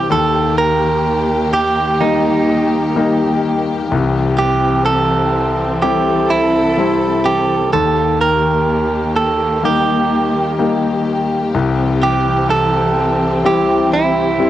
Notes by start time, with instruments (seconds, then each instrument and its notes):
Already playing: grand piano G3 C4 E4, string section G4
0.09 grand piano D#2, string section D#3 A#3, clean electric guitar A4
0.58 clean electric guitar A#4
1.53 clean electric guitar G4
2.01 grand piano G3 A#3 D#4, clean electric guitar D#4
2.96 grand piano G3 A#3 D#4
3.91 grand piano C2, string section E3 C4
4.39 clean electric guitar G4
4.86 clean electric guitar A4
5.82 grand piano G3 C4 E4, clean electric guitar G4, string section A4
6.30 clean electric guitar E4
6.77 grand piano G3 C4 E4
7.26 clean electric guitar G4
7.73 grand piano D#2, string section D#3 A#3 G4, clean electric guitar A4
8.21 clean electric guitar A#4
9.16 clean electric guitar A4
9.63 grand piano G3 A#3 D#4, clean electric guitar G4
10.59 grand piano G3 A#3 D#4
11.53 grand piano C2, string section E3 C4
12.03 clean electric guitar G4
12.50 clean electric guitar A4
13.44 grand piano G3 C4 E4, clean electric guitar G4
13.93 clean electric guitar E4
14.38 grand piano G3 C4 E4